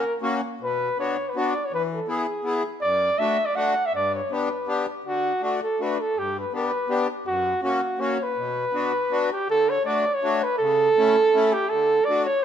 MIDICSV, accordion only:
0, 0, Header, 1, 2, 480
1, 0, Start_track
1, 0, Key_signature, 2, "minor"
1, 0, Tempo, 370370
1, 785, Time_signature, 3, 2, 24, 8
1, 16133, End_track
2, 0, Start_track
2, 0, Title_t, "Accordion"
2, 0, Program_c, 0, 21
2, 278, Note_on_c, 0, 58, 67
2, 283, Note_on_c, 0, 61, 52
2, 294, Note_on_c, 0, 66, 81
2, 527, Note_off_c, 0, 58, 0
2, 530, Note_off_c, 0, 61, 0
2, 535, Note_off_c, 0, 66, 0
2, 789, Note_on_c, 0, 47, 60
2, 1156, Note_off_c, 0, 47, 0
2, 1269, Note_on_c, 0, 59, 53
2, 1284, Note_on_c, 0, 62, 51
2, 1295, Note_on_c, 0, 66, 61
2, 1506, Note_off_c, 0, 59, 0
2, 1513, Note_off_c, 0, 62, 0
2, 1519, Note_off_c, 0, 66, 0
2, 1754, Note_on_c, 0, 59, 59
2, 1764, Note_on_c, 0, 62, 54
2, 1771, Note_on_c, 0, 66, 72
2, 1987, Note_off_c, 0, 59, 0
2, 1991, Note_off_c, 0, 62, 0
2, 1995, Note_off_c, 0, 66, 0
2, 2235, Note_on_c, 0, 52, 65
2, 2592, Note_off_c, 0, 52, 0
2, 2697, Note_on_c, 0, 59, 64
2, 2699, Note_on_c, 0, 64, 49
2, 2716, Note_on_c, 0, 68, 59
2, 2930, Note_off_c, 0, 59, 0
2, 2931, Note_off_c, 0, 64, 0
2, 2940, Note_off_c, 0, 68, 0
2, 3158, Note_on_c, 0, 59, 57
2, 3170, Note_on_c, 0, 64, 50
2, 3185, Note_on_c, 0, 68, 70
2, 3399, Note_off_c, 0, 59, 0
2, 3405, Note_off_c, 0, 64, 0
2, 3412, Note_off_c, 0, 68, 0
2, 3660, Note_on_c, 0, 42, 67
2, 4019, Note_off_c, 0, 42, 0
2, 4138, Note_on_c, 0, 57, 60
2, 4145, Note_on_c, 0, 62, 58
2, 4155, Note_on_c, 0, 66, 74
2, 4368, Note_off_c, 0, 57, 0
2, 4371, Note_off_c, 0, 62, 0
2, 4376, Note_off_c, 0, 66, 0
2, 4607, Note_on_c, 0, 57, 63
2, 4618, Note_on_c, 0, 62, 53
2, 4626, Note_on_c, 0, 66, 80
2, 4845, Note_off_c, 0, 57, 0
2, 4850, Note_off_c, 0, 62, 0
2, 4854, Note_off_c, 0, 66, 0
2, 5098, Note_on_c, 0, 43, 58
2, 5460, Note_off_c, 0, 43, 0
2, 5578, Note_on_c, 0, 59, 53
2, 5588, Note_on_c, 0, 62, 57
2, 5601, Note_on_c, 0, 67, 60
2, 5811, Note_off_c, 0, 59, 0
2, 5816, Note_off_c, 0, 62, 0
2, 5822, Note_off_c, 0, 67, 0
2, 6052, Note_on_c, 0, 59, 51
2, 6067, Note_on_c, 0, 62, 45
2, 6069, Note_on_c, 0, 67, 63
2, 6294, Note_off_c, 0, 59, 0
2, 6301, Note_off_c, 0, 62, 0
2, 6302, Note_off_c, 0, 67, 0
2, 6528, Note_on_c, 0, 50, 65
2, 6902, Note_off_c, 0, 50, 0
2, 7015, Note_on_c, 0, 57, 51
2, 7026, Note_on_c, 0, 62, 50
2, 7043, Note_on_c, 0, 66, 59
2, 7257, Note_off_c, 0, 57, 0
2, 7262, Note_off_c, 0, 62, 0
2, 7271, Note_off_c, 0, 66, 0
2, 7501, Note_on_c, 0, 57, 57
2, 7517, Note_on_c, 0, 62, 52
2, 7519, Note_on_c, 0, 66, 59
2, 7740, Note_off_c, 0, 57, 0
2, 7748, Note_off_c, 0, 62, 0
2, 7750, Note_off_c, 0, 66, 0
2, 7996, Note_on_c, 0, 43, 54
2, 8355, Note_off_c, 0, 43, 0
2, 8460, Note_on_c, 0, 59, 49
2, 8467, Note_on_c, 0, 62, 49
2, 8482, Note_on_c, 0, 67, 60
2, 8694, Note_off_c, 0, 59, 0
2, 8698, Note_off_c, 0, 62, 0
2, 8705, Note_off_c, 0, 67, 0
2, 8919, Note_on_c, 0, 59, 62
2, 8939, Note_on_c, 0, 62, 53
2, 8946, Note_on_c, 0, 67, 78
2, 9160, Note_off_c, 0, 59, 0
2, 9170, Note_off_c, 0, 62, 0
2, 9173, Note_off_c, 0, 67, 0
2, 9409, Note_on_c, 0, 42, 62
2, 9771, Note_off_c, 0, 42, 0
2, 9879, Note_on_c, 0, 58, 58
2, 9880, Note_on_c, 0, 61, 51
2, 9898, Note_on_c, 0, 66, 74
2, 10116, Note_off_c, 0, 58, 0
2, 10116, Note_off_c, 0, 61, 0
2, 10125, Note_off_c, 0, 66, 0
2, 10356, Note_on_c, 0, 58, 62
2, 10357, Note_on_c, 0, 61, 58
2, 10374, Note_on_c, 0, 66, 71
2, 10594, Note_off_c, 0, 58, 0
2, 10595, Note_off_c, 0, 61, 0
2, 10603, Note_off_c, 0, 66, 0
2, 10848, Note_on_c, 0, 47, 67
2, 11211, Note_off_c, 0, 47, 0
2, 11317, Note_on_c, 0, 59, 67
2, 11323, Note_on_c, 0, 62, 66
2, 11340, Note_on_c, 0, 66, 67
2, 11560, Note_off_c, 0, 59, 0
2, 11563, Note_off_c, 0, 62, 0
2, 11571, Note_off_c, 0, 66, 0
2, 11797, Note_on_c, 0, 59, 72
2, 11804, Note_on_c, 0, 62, 56
2, 11822, Note_on_c, 0, 66, 70
2, 12046, Note_off_c, 0, 59, 0
2, 12049, Note_off_c, 0, 62, 0
2, 12058, Note_off_c, 0, 66, 0
2, 12297, Note_on_c, 0, 50, 60
2, 12669, Note_off_c, 0, 50, 0
2, 12768, Note_on_c, 0, 57, 57
2, 12772, Note_on_c, 0, 62, 64
2, 12785, Note_on_c, 0, 66, 60
2, 13015, Note_off_c, 0, 57, 0
2, 13017, Note_off_c, 0, 62, 0
2, 13023, Note_off_c, 0, 66, 0
2, 13247, Note_on_c, 0, 57, 67
2, 13265, Note_on_c, 0, 62, 60
2, 13275, Note_on_c, 0, 66, 71
2, 13496, Note_off_c, 0, 57, 0
2, 13505, Note_off_c, 0, 62, 0
2, 13509, Note_off_c, 0, 66, 0
2, 13754, Note_on_c, 0, 49, 72
2, 14117, Note_off_c, 0, 49, 0
2, 14221, Note_on_c, 0, 57, 63
2, 14226, Note_on_c, 0, 61, 58
2, 14240, Note_on_c, 0, 64, 77
2, 14458, Note_off_c, 0, 57, 0
2, 14461, Note_off_c, 0, 61, 0
2, 14468, Note_off_c, 0, 64, 0
2, 14692, Note_on_c, 0, 57, 72
2, 14706, Note_on_c, 0, 61, 79
2, 14716, Note_on_c, 0, 64, 83
2, 14932, Note_off_c, 0, 57, 0
2, 14938, Note_off_c, 0, 61, 0
2, 14944, Note_off_c, 0, 64, 0
2, 15195, Note_on_c, 0, 50, 59
2, 15549, Note_off_c, 0, 50, 0
2, 15654, Note_on_c, 0, 57, 63
2, 15666, Note_on_c, 0, 62, 50
2, 15672, Note_on_c, 0, 66, 68
2, 15889, Note_off_c, 0, 57, 0
2, 15895, Note_off_c, 0, 62, 0
2, 15898, Note_off_c, 0, 66, 0
2, 16133, End_track
0, 0, End_of_file